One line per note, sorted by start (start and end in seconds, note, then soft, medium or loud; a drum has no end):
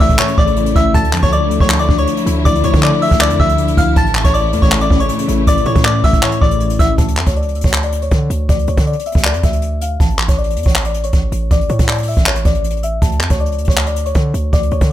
0.00 0.18 A1 loud
0.00 0.19 A2 medium
0.00 0.91 C#3 medium
0.00 0.91 E3 medium
0.00 0.97 E3 medium
0.00 0.97 A3 medium
0.00 3.92 A3 medium
0.00 0.96 C#4 medium
0.00 0.19 E4 medium
0.00 0.90 E4 medium
0.00 0.18 E5 medium
0.00 0.18 E6 medium
0.00 kick loud
0.00 open hi-hat medium
0.10 kick medium
0.10 closed hi-hat soft
0.19 0.56 A2 medium
0.19 0.37 C#5 medium
0.19 0.37 C#6 medium
0.19 clap loud
0.19 closed hi-hat medium
0.28 closed hi-hat medium
0.38 0.74 A1 loud
0.38 0.95 C#3 medium
0.38 0.74 D5 medium
0.38 0.73 D6 medium
0.38 kick loud
0.47 closed hi-hat medium
0.56 0.94 A2 medium
0.56 closed hi-hat medium
0.66 closed hi-hat medium
0.76 0.94 A1 loud
0.76 0.94 E4 medium
0.76 0.94 E5 medium
0.76 0.93 E6 medium
0.76 kick loud
0.76 closed hi-hat medium
0.94 1.15 D2 loud
0.94 1.31 D3 medium
0.94 3.93 D3 medium
0.94 3.93 F3 medium
0.94 6.94 E4 medium
0.94 1.21 A5 medium
0.94 1.21 A6 medium
0.94 kick loud
0.94 closed hi-hat medium
1.04 closed hi-hat medium
1.13 1.22 F2 loud
1.13 2.08 F3 medium
1.13 clap medium
1.13 closed hi-hat medium
1.23 1.43 D2 loud
1.23 1.32 C#5 medium
1.23 1.31 C#6 medium
1.23 kick medium
1.23 closed hi-hat medium
1.32 1.69 D3 medium
1.32 1.59 D5 medium
1.32 1.59 D6 medium
1.32 closed hi-hat medium
1.42 1.52 C#2 loud
1.51 1.60 D2 loud
1.51 2.45 A3 medium
1.51 closed hi-hat medium
1.60 1.88 D2 loud
1.60 1.79 C#5 medium
1.60 1.78 C#6 medium
1.60 kick medium
1.60 closed hi-hat soft
1.70 2.07 D3 medium
1.70 clap loud
1.70 closed hi-hat medium
1.79 1.97 D5 medium
1.79 1.97 D6 medium
1.79 closed hi-hat medium
1.89 2.07 D2 loud
1.89 2.83 D4 medium
1.89 kick loud
1.98 2.43 C#5 medium
1.98 2.42 C#6 medium
1.98 closed hi-hat medium
2.07 2.44 D3 medium
2.07 closed hi-hat medium
2.17 closed hi-hat medium
2.26 2.45 D2 loud
2.26 3.21 E4 loud
2.26 closed hi-hat medium
2.45 2.63 D2 loud
2.45 2.82 D3 medium
2.45 2.63 D5 medium
2.45 2.63 D6 loud
2.45 kick loud
2.45 closed hi-hat medium
2.55 closed hi-hat medium
2.64 2.73 D2 loud
2.64 3.59 F3 medium
2.64 2.82 C#5 medium
2.64 2.82 C#6 medium
2.64 closed hi-hat medium
2.73 2.92 D3 loud
2.73 kick medium
2.73 closed hi-hat medium
2.83 3.19 D3 medium
2.83 3.01 D5 medium
2.83 3.01 D6 medium
2.83 clap loud
2.83 closed hi-hat medium
3.01 3.96 A3 medium
3.01 3.20 E5 medium
3.01 3.20 E6 medium
3.01 open hi-hat medium
3.11 3.32 D2 loud
3.11 kick loud
3.11 closed hi-hat soft
3.21 3.57 D3 medium
3.21 3.39 D5 medium
3.21 3.38 D6 loud
3.21 clap loud
3.21 closed hi-hat medium
3.30 3.39 F2 loud
3.30 closed hi-hat medium
3.40 3.76 D2 loud
3.40 3.96 D4 medium
3.40 3.75 E5 medium
3.40 3.75 E6 medium
3.40 kick loud
3.49 closed hi-hat medium
3.58 3.96 D3 medium
3.58 closed hi-hat medium
3.68 closed hi-hat medium
3.77 3.95 D2 loud
3.77 3.96 E4 medium
3.77 3.96 F5 medium
3.77 3.95 F6 medium
3.77 kick loud
3.77 closed hi-hat medium
3.96 4.23 A1 loud
3.96 4.33 A2 medium
3.96 6.95 C#3 medium
3.96 6.95 E3 medium
3.96 6.95 A3 medium
3.96 4.23 A5 medium
3.96 4.24 A6 medium
3.96 kick loud
3.96 closed hi-hat medium
4.06 closed hi-hat medium
4.15 5.09 E3 medium
4.15 clap medium
4.15 closed hi-hat medium
4.24 4.54 A1 loud
4.24 4.34 C#5 medium
4.24 4.33 C#6 medium
4.24 kick medium
4.24 closed hi-hat medium
4.34 4.71 A2 medium
4.34 4.61 D5 medium
4.34 4.60 D6 medium
4.34 closed hi-hat medium
4.53 4.62 E2 loud
4.53 5.47 A3 medium
4.53 closed hi-hat medium
4.62 4.89 A1 loud
4.62 4.80 C#5 medium
4.62 4.80 C#6 medium
4.62 kick loud
4.62 closed hi-hat soft
4.72 5.08 A2 medium
4.72 clap loud
4.72 closed hi-hat medium
4.81 4.99 D5 medium
4.81 4.99 D6 medium
4.81 closed hi-hat medium
4.90 5.09 A1 loud
4.90 5.85 C#4 medium
4.90 kick loud
5.00 5.45 C#5 medium
5.00 5.44 C#6 medium
5.00 closed hi-hat medium
5.09 5.46 A2 medium
5.09 closed hi-hat medium
5.19 closed hi-hat medium
5.28 5.46 A1 loud
5.28 6.23 E4 medium
5.28 closed hi-hat medium
5.47 5.65 A1 loud
5.47 5.84 A2 medium
5.47 5.65 D5 medium
5.47 5.65 D6 loud
5.47 kick loud
5.47 closed hi-hat medium
5.57 closed hi-hat medium
5.66 5.75 A2 loud
5.66 6.60 E3 medium
5.66 5.84 C#5 medium
5.66 5.84 C#6 medium
5.66 closed hi-hat medium
5.75 6.03 A2 loud
5.75 kick medium
5.75 closed hi-hat medium
5.85 6.22 A2 medium
5.85 6.03 D5 medium
5.85 6.03 D6 medium
5.85 clap medium
5.85 closed hi-hat medium
6.04 6.22 A1 loud
6.04 6.98 A3 medium
6.04 6.22 E5 medium
6.04 6.22 E6 medium
6.04 kick loud
6.04 open hi-hat medium
6.13 kick loud
6.13 closed hi-hat soft
6.23 6.59 A2 medium
6.23 6.41 C#5 medium
6.23 6.40 C#6 medium
6.23 clap loud
6.23 closed hi-hat medium
6.32 closed hi-hat medium
6.41 6.78 A1 loud
6.41 6.98 C#3 medium
6.41 6.77 D5 medium
6.41 6.77 D6 medium
6.41 kick loud
6.51 closed hi-hat medium
6.60 6.98 A2 medium
6.60 closed hi-hat medium
6.70 closed hi-hat medium
6.79 6.97 A1 loud
6.79 6.98 E4 medium
6.79 6.97 E5 medium
6.79 6.97 E6 medium
6.79 kick loud
6.79 closed hi-hat medium
6.98 7.19 D2 loud
6.98 7.25 A5 medium
6.98 7.25 A6 medium
6.98 kick loud
6.98 closed hi-hat medium
7.08 closed hi-hat medium
7.16 7.26 F2 loud
7.16 clap medium
7.16 closed hi-hat medium
7.26 7.47 D2 loud
7.26 7.36 C#5 medium
7.26 7.35 C#6 medium
7.26 kick medium
7.26 closed hi-hat medium
7.36 7.63 D5 medium
7.36 7.63 D6 medium
7.36 closed hi-hat soft
7.42 7.56 C#2 loud
7.42 closed hi-hat soft
7.49 closed hi-hat medium
7.55 7.64 D2 loud
7.55 closed hi-hat medium
7.61 8.09 D2 loud
7.61 7.82 C#6 medium
7.61 kick medium
7.61 closed hi-hat medium
7.65 7.82 C#5 medium
7.65 closed hi-hat medium
7.73 clap loud
7.73 closed hi-hat medium
7.83 8.01 D5 medium
7.83 8.01 D6 medium
7.83 closed hi-hat medium
7.92 closed hi-hat medium
8.02 8.47 C#5 medium
8.02 8.46 C#6 medium
8.02 closed hi-hat medium
8.11 8.30 D3 loud
8.11 kick medium
8.11 closed hi-hat medium
8.30 8.48 D2 loud
8.30 closed hi-hat medium
8.49 8.67 D2 loud
8.49 8.67 D5 medium
8.49 8.67 D6 loud
8.49 kick loud
8.49 closed hi-hat medium
8.59 closed hi-hat medium
8.67 8.77 D2 loud
8.67 8.86 C#5 medium
8.67 8.86 C#6 medium
8.67 closed hi-hat medium
8.77 8.96 D3 loud
8.77 kick medium
8.77 closed hi-hat medium
8.86 9.05 D5 medium
8.86 9.04 D6 medium
8.86 closed hi-hat soft
8.93 closed hi-hat soft
8.99 closed hi-hat medium
9.06 9.24 E5 medium
9.06 9.23 E6 medium
9.06 closed hi-hat medium
9.12 9.35 D2 loud
9.12 kick loud
9.12 closed hi-hat medium
9.18 closed hi-hat medium
9.24 9.43 D5 medium
9.24 9.42 D6 medium
9.24 clap loud
9.24 closed hi-hat medium
9.34 9.43 F2 loud
9.34 closed hi-hat medium
9.43 9.98 D2 loud
9.43 9.79 E5 medium
9.43 9.79 E6 medium
9.43 kick loud
9.43 closed hi-hat medium
9.53 closed hi-hat medium
9.62 closed hi-hat medium
9.81 9.99 F5 medium
9.81 9.99 F6 medium
9.81 closed hi-hat medium
10.00 10.27 A1 loud
10.00 10.27 A5 medium
10.00 10.27 A6 medium
10.00 kick loud
10.00 closed hi-hat medium
10.10 closed hi-hat medium
10.18 clap medium
10.18 closed hi-hat medium
10.28 10.58 A1 loud
10.28 10.37 C#5 medium
10.28 10.37 C#6 medium
10.28 kick medium
10.28 closed hi-hat medium
10.37 10.65 D5 medium
10.37 10.64 D6 medium
10.37 closed hi-hat soft
10.44 closed hi-hat soft
10.50 closed hi-hat medium
10.56 10.65 E2 loud
10.56 closed hi-hat medium
10.63 11.11 A1 loud
10.63 10.84 C#5 medium
10.63 10.84 C#6 medium
10.63 kick medium
10.63 closed hi-hat medium
10.69 closed hi-hat medium
10.75 clap loud
10.75 closed hi-hat medium
10.84 11.03 D5 medium
10.84 11.03 D6 medium
10.84 closed hi-hat medium
10.94 closed hi-hat medium
11.04 11.48 C#5 medium
11.04 11.48 C#6 medium
11.04 closed hi-hat medium
11.13 11.31 A1 loud
11.13 kick medium
11.13 closed hi-hat medium
11.32 11.50 A1 loud
11.32 closed hi-hat medium
11.51 11.69 A1 loud
11.51 11.69 D5 medium
11.51 11.69 D6 loud
11.51 kick loud
11.51 closed hi-hat medium
11.61 closed hi-hat medium
11.69 11.79 A2 loud
11.69 11.88 C#5 medium
11.69 11.88 C#6 medium
11.69 closed hi-hat medium
11.79 12.15 A2 loud
11.79 kick medium
11.79 closed hi-hat medium
11.88 12.07 D5 medium
11.88 12.06 D6 medium
11.88 clap medium
11.88 closed hi-hat soft
11.93 closed hi-hat soft
11.98 closed hi-hat medium
12.03 closed hi-hat medium
12.07 12.26 E5 medium
12.07 12.25 E6 medium
12.07 open hi-hat medium
12.17 12.44 A1 loud
12.17 kick medium
12.17 closed hi-hat soft
12.26 12.45 C#5 medium
12.26 12.44 C#6 medium
12.26 clap loud
12.26 closed hi-hat medium
12.35 closed hi-hat medium
12.45 13.00 A1 loud
12.45 12.81 D5 medium
12.45 12.81 D6 medium
12.45 kick loud
12.45 closed hi-hat medium
12.55 closed hi-hat medium
12.64 closed hi-hat medium
12.70 closed hi-hat medium
12.77 closed hi-hat soft
12.83 13.01 E5 medium
12.83 13.01 E6 medium
12.83 closed hi-hat medium
13.02 13.22 D2 loud
13.02 13.28 A5 medium
13.02 13.29 A6 medium
13.02 kick loud
13.02 closed hi-hat medium
13.12 closed hi-hat medium
13.20 13.30 F2 loud
13.20 clap medium
13.20 closed hi-hat medium
13.30 13.51 D2 loud
13.30 13.39 C#5 medium
13.30 13.39 C#6 medium
13.30 kick medium
13.30 closed hi-hat medium
13.40 13.67 D5 medium
13.40 13.66 D6 medium
13.40 closed hi-hat soft
13.46 13.60 C#2 loud
13.46 closed hi-hat soft
13.52 closed hi-hat medium
13.58 13.67 D2 loud
13.58 closed hi-hat medium
13.65 14.13 D2 loud
13.65 13.86 C#6 medium
13.65 kick medium
13.65 closed hi-hat medium
13.69 13.86 C#5 medium
13.69 closed hi-hat medium
13.77 clap loud
13.77 closed hi-hat medium
13.86 14.05 D5 medium
13.86 14.04 D6 medium
13.86 closed hi-hat medium
13.96 closed hi-hat medium
14.06 14.50 C#5 medium
14.06 14.50 C#6 medium
14.06 closed hi-hat medium
14.15 14.33 D3 loud
14.15 kick medium
14.15 closed hi-hat medium
14.34 14.52 D2 loud
14.34 closed hi-hat medium
14.53 14.71 D2 loud
14.53 14.71 D5 medium
14.53 14.70 D6 loud
14.53 kick loud
14.53 closed hi-hat medium
14.63 closed hi-hat medium
14.71 14.81 D2 loud
14.71 14.90 C#5 medium
14.71 14.89 C#6 medium
14.71 closed hi-hat medium
14.81 14.92 D3 loud
14.81 kick medium
14.81 closed hi-hat medium